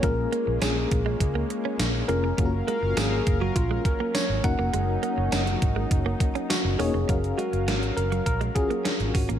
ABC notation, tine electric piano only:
X:1
M:4/4
L:1/16
Q:1/4=102
K:F#
V:1 name="Tine electric piano"
A4 G8 z2 A2- | A2 A2 G3 F E2 A2 c2 f2- | f12 F2 G2- | G2 F4 A2 A2 G4 F2 |]